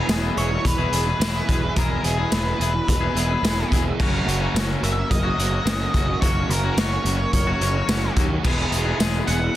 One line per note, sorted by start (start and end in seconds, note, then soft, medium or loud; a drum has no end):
0.00 0.10 B3 medium
0.00 0.10 E4 medium
0.00 0.10 G#4 medium
0.00 3.96 B4 medium
0.00 3.96 E5 medium
0.00 3.96 G#5 medium
0.00 3.96 E6 medium
0.08 0.28 E1 medium
0.08 1.20 E2 medium
0.08 0.65 B2 loud
0.08 0.36 E3 medium
0.08 0.37 B3 medium
0.08 0.38 E4 loud
0.08 0.39 G#4 medium
0.08 snare loud
0.08 closed hi-hat medium
0.08 tambourine loud
0.36 0.56 E1 medium
0.36 0.51 E3 medium
0.36 0.50 B3 medium
0.36 0.50 E4 medium
0.36 0.50 G#4 medium
0.36 0.66 C#5 loud
0.36 0.64 C#6 medium
0.36 closed hi-hat medium
0.51 muted overdriven electric guitar stroke medium
0.51 muted clean electric guitar stroke soft
0.65 0.84 E1 medium
0.65 1.73 B4 loud
0.65 1.73 B5 medium
0.65 kick medium
0.65 closed hi-hat medium
0.78 0.91 E3 medium
0.78 0.93 B3 medium
0.78 0.94 E4 medium
0.78 0.94 G#4 medium
0.92 1.12 E1 medium
0.92 1.07 E3 medium
0.92 1.06 B3 medium
0.92 1.05 E4 medium
0.92 1.04 G#4 medium
0.92 closed hi-hat medium
1.06 1.21 E3 medium
1.06 1.21 B3 medium
1.06 1.22 E4 medium
1.06 1.22 G#4 medium
1.06 muted overdriven electric guitar stroke medium
1.20 1.40 E1 medium
1.20 1.74 E2 medium
1.20 1.76 B2 medium
1.20 1.47 E3 loud
1.20 1.48 B3 loud
1.20 1.49 E4 loud
1.20 1.50 G#4 loud
1.20 snare loud
1.20 closed hi-hat loud
1.20 tambourine loud
1.48 1.68 E1 medium
1.48 1.62 E3 medium
1.48 1.62 B3 medium
1.48 1.62 E4 medium
1.48 1.61 G#4 medium
1.48 kick medium
1.48 closed hi-hat medium
1.62 1.76 B3 medium
1.62 1.76 E4 medium
1.62 1.77 G#4 medium
1.62 muted clean electric guitar stroke soft
1.76 1.96 E1 medium
1.76 2.30 E2 medium
1.76 2.31 B2 medium
1.76 2.19 E3 medium
1.76 2.19 B3 medium
1.76 2.17 E4 loud
1.76 2.16 G#4 loud
1.76 2.03 A#4 loud
1.76 2.03 A#5 medium
1.76 kick loud
1.76 closed hi-hat loud
2.03 2.23 E1 medium
2.03 2.32 G#4 medium
2.03 2.30 G#5 medium
2.03 closed hi-hat medium
2.18 2.31 E3 medium
2.18 2.32 B3 medium
2.18 2.33 E4 medium
2.18 2.33 G#4 medium
2.31 2.51 E1 medium
2.31 2.87 E2 loud
2.31 2.88 B2 medium
2.31 2.58 E3 medium
2.31 2.60 B3 loud
2.31 2.60 E4 medium
2.31 2.61 G#4 loud
2.31 2.88 B4 loud
2.31 2.84 B5 medium
2.31 snare loud
2.31 closed hi-hat medium
2.31 tambourine loud
2.59 2.79 E1 medium
2.59 2.73 E3 medium
2.59 2.73 B3 medium
2.59 2.73 E4 medium
2.59 2.73 G#4 medium
2.59 closed hi-hat medium
2.74 muted clean electric guitar stroke soft
2.74 muted overdriven electric guitar stroke soft
2.88 3.07 E1 loud
2.88 3.68 B4 medium
2.88 3.68 B5 medium
2.88 kick medium
2.88 closed hi-hat loud
3.01 3.13 E3 medium
3.01 3.15 B3 medium
3.01 3.15 E4 medium
3.01 3.16 G#4 medium
3.14 3.35 E1 medium
3.14 3.30 E3 medium
3.14 3.29 B3 medium
3.14 3.29 E4 medium
3.14 3.27 G#4 medium
3.14 closed hi-hat medium
3.29 3.43 E3 medium
3.29 3.43 B3 medium
3.29 3.44 E4 medium
3.29 3.45 G#4 medium
3.29 muted overdriven electric guitar stroke medium
3.42 3.62 E1 medium
3.42 3.97 E2 medium
3.42 3.98 B2 loud
3.42 3.69 E3 loud
3.42 3.71 B3 loud
3.42 3.72 E4 loud
3.42 3.73 G#4 loud
3.42 snare loud
3.42 closed hi-hat loud
3.42 tambourine loud
3.71 3.91 E1 medium
3.71 3.85 E3 medium
3.71 3.85 B3 medium
3.71 3.85 E4 medium
3.71 3.84 G#4 medium
3.71 kick medium
3.71 closed hi-hat medium
3.86 3.99 B3 medium
3.86 3.99 E4 medium
3.86 3.98 G#4 medium
3.86 muted clean electric guitar stroke medium
3.99 4.19 F#1 medium
3.99 4.54 F#2 medium
3.99 4.54 C#3 medium
3.99 4.43 F#3 medium
3.99 4.42 A#3 loud
3.99 4.41 C#4 medium
3.99 4.40 F#4 loud
3.99 8.42 A#4 medium
3.99 8.42 C#5 medium
3.99 6.21 F#5 medium
3.99 8.42 C#6 medium
3.99 kick loud
3.99 crash medium
4.26 4.46 F#1 medium
4.26 closed hi-hat medium
4.40 4.55 F#3 medium
4.40 4.56 A#3 medium
4.40 4.56 C#4 medium
4.40 4.57 F#4 medium
4.54 4.74 F#1 loud
4.54 5.65 F#2 medium
4.54 5.11 C#3 loud
4.54 4.81 F#3 loud
4.54 4.82 A#3 medium
4.54 4.83 C#4 loud
4.54 4.84 F#4 medium
4.54 snare loud
4.54 closed hi-hat loud
4.54 tambourine loud
4.81 5.02 F#1 medium
4.81 4.96 F#3 medium
4.81 4.96 A#3 medium
4.81 4.96 C#4 medium
4.81 4.95 F#4 medium
4.81 5.11 E5 loud
4.81 5.09 E6 medium
4.81 closed hi-hat medium
4.97 muted clean electric guitar stroke soft
4.97 muted overdriven electric guitar stroke medium
5.10 5.30 F#1 loud
5.10 6.21 D#5 loud
5.10 6.19 D#6 medium
5.10 kick medium
5.10 closed hi-hat medium
5.23 5.36 F#3 medium
5.23 5.37 A#3 medium
5.23 5.38 C#4 medium
5.23 5.39 F#4 medium
5.37 5.58 F#1 medium
5.37 5.53 F#3 medium
5.37 5.52 A#3 medium
5.37 5.51 C#4 medium
5.37 5.50 F#4 medium
5.37 closed hi-hat medium
5.51 5.66 F#3 medium
5.51 5.66 A#3 medium
5.51 5.67 C#4 medium
5.51 5.68 F#4 medium
5.51 muted overdriven electric guitar stroke medium
5.65 5.85 F#1 medium
5.65 6.19 F#2 loud
5.65 6.20 C#3 medium
5.65 5.92 F#3 loud
5.65 5.93 A#3 loud
5.65 5.94 C#4 loud
5.65 5.94 F#4 loud
5.65 snare loud
5.65 closed hi-hat loud
5.65 tambourine loud
5.93 6.14 F#1 medium
5.93 6.08 F#3 medium
5.93 6.07 A#3 medium
5.93 6.07 C#4 medium
5.93 6.07 F#4 medium
5.93 kick medium
5.93 closed hi-hat medium
6.07 6.21 C#4 medium
6.07 6.22 F#4 medium
6.07 muted clean electric guitar stroke medium
6.21 6.41 F#1 medium
6.21 6.76 F#2 medium
6.21 6.77 C#3 medium
6.21 6.65 F#3 loud
6.21 6.64 A#3 medium
6.21 6.63 C#4 medium
6.21 6.62 F#4 medium
6.21 6.50 C#5 loud
6.21 8.43 G#5 medium
6.21 6.48 C#6 medium
6.21 kick loud
6.21 closed hi-hat medium
6.49 6.69 F#1 medium
6.49 6.79 A#4 medium
6.49 6.76 A#5 medium
6.49 closed hi-hat medium
6.64 6.78 F#3 medium
6.64 6.78 A#3 medium
6.64 6.79 C#4 medium
6.64 6.80 F#4 medium
6.77 6.97 F#1 medium
6.77 7.33 F#2 medium
6.77 7.34 C#3 medium
6.77 7.04 F#3 medium
6.77 7.05 A#3 loud
6.77 7.06 C#4 loud
6.77 7.07 F#4 loud
6.77 7.32 C#5 medium
6.77 7.30 C#6 medium
6.77 snare loud
6.77 closed hi-hat medium
6.77 tambourine loud
7.05 7.24 F#1 medium
7.05 7.19 F#3 medium
7.05 7.19 A#3 medium
7.05 7.19 C#4 medium
7.05 7.18 F#4 medium
7.05 closed hi-hat medium
7.19 muted clean electric guitar stroke soft
7.19 muted overdriven electric guitar stroke medium
7.33 7.53 F#1 medium
7.33 8.13 C#5 medium
7.33 8.13 C#6 medium
7.33 kick medium
7.33 closed hi-hat loud
7.47 7.59 F#3 medium
7.47 7.60 A#3 medium
7.47 7.61 C#4 medium
7.47 7.62 F#4 medium
7.60 7.80 F#1 medium
7.60 7.76 F#3 medium
7.60 7.75 A#3 medium
7.60 7.74 C#4 medium
7.60 7.73 F#4 medium
7.60 closed hi-hat medium
7.74 7.88 F#3 medium
7.74 7.88 A#3 medium
7.74 7.89 C#4 medium
7.74 7.89 F#4 medium
7.74 muted overdriven electric guitar stroke soft
7.87 8.08 F#1 medium
7.87 8.42 F#2 medium
7.87 8.43 C#3 loud
7.87 8.14 F#3 loud
7.87 8.15 A#3 loud
7.87 8.16 C#4 loud
7.87 8.17 F#4 loud
7.87 snare loud
7.87 closed hi-hat loud
7.87 tambourine loud
8.15 8.36 D#2 medium
8.15 8.30 F#3 medium
8.15 8.30 A#3 medium
8.15 8.30 C#4 medium
8.15 8.29 F#4 medium
8.15 kick medium
8.15 closed hi-hat medium
8.29 8.44 C#4 medium
8.29 8.42 F#4 medium
8.29 muted clean electric guitar stroke medium
8.43 8.64 E1 medium
8.43 8.98 E2 medium
8.43 8.98 B2 medium
8.43 8.87 E3 loud
8.43 8.86 G#3 medium
8.43 8.85 B3 loud
8.43 8.87 E4 loud
8.43 9.56 G#4 medium
8.43 8.84 G#4 loud
8.43 9.56 B4 medium
8.43 9.56 E5 medium
8.43 9.56 B5 medium
8.43 kick loud
8.43 crash loud
8.72 8.91 E1 medium
8.72 closed hi-hat medium
8.85 9.00 E3 medium
8.85 9.00 G#3 medium
8.85 9.01 B3 medium
8.85 8.99 E4 medium
8.85 9.01 G#4 medium
8.99 9.20 E1 medium
8.99 9.56 E2 medium
8.99 9.56 B2 loud
8.99 9.26 E3 medium
8.99 9.28 G#3 loud
8.99 9.28 B3 loud
8.99 9.27 E4 loud
8.99 9.29 G#4 loud
8.99 snare loud
8.99 closed hi-hat loud
8.99 tambourine loud
9.27 9.48 E1 medium
9.27 9.41 E3 medium
9.27 9.41 G#3 medium
9.27 9.41 B3 medium
9.27 9.39 E4 medium
9.27 9.40 G#4 medium
9.27 9.54 F#5 loud
9.27 9.54 F#6 medium
9.27 closed hi-hat medium
9.40 muted overdriven electric guitar stroke medium
9.40 muted clean electric guitar stroke medium